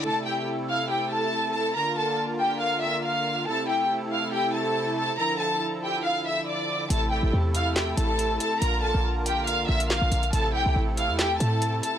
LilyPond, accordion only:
<<
  \new Staff \with { instrumentName = "Accordion" } { \time 4/4 \key a \phrygian \tempo 4 = 140 a'1 | bes'1 | a'1~ | a'1 |
a'1 | bes'1 | a'1 | }
  \new Staff \with { instrumentName = "Accordion" } { \time 4/4 \key a \phrygian <c a e'>1 | <d bes f'>1 | <c a e'>1 | <d f e'>1 |
<c a e'>1 | <d bes f'>1 | <c a e'>1 | }
>>